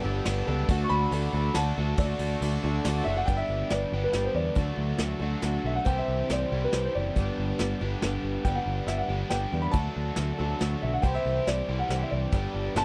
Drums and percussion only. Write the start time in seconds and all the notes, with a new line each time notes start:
0.25 snare, ride
0.68 kick, ride
1.12 ride
1.54 snare, ride
1.97 kick, ride
2.19 ride
2.42 ride
2.85 snare, ride
3.28 kick, closed hi-hat
3.70 snare, closed hi-hat
4.13 snare, closed hi-hat
4.55 kick, closed hi-hat
4.98 snare, closed hi-hat
5.42 snare, closed hi-hat
5.86 kick, closed hi-hat
6.29 snare, closed hi-hat
6.72 snare, closed hi-hat
7.16 kick, closed hi-hat
7.59 snare, closed hi-hat
8.02 snare, closed hi-hat
8.45 kick, closed hi-hat
8.88 snare, closed hi-hat
9.30 snare, closed hi-hat
9.73 kick, closed hi-hat
10.16 snare, closed hi-hat
10.60 snare, closed hi-hat
11.03 kick, closed hi-hat
11.47 snare, closed hi-hat
11.90 snare, closed hi-hat
12.32 kick, closed hi-hat
12.76 snare, closed hi-hat